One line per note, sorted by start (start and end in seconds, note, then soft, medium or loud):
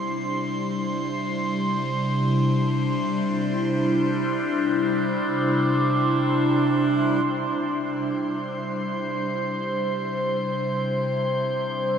0.00 11.98 C3 medium
0.00 11.98 G3 medium
0.00 11.98 D4 medium
0.00 11.98 E4 medium
0.00 7.25 C5 medium
0.00 7.25 C6 medium
7.25 11.98 C3 medium
7.25 11.98 G3 medium
7.25 11.98 C5 medium
7.25 11.98 C6 medium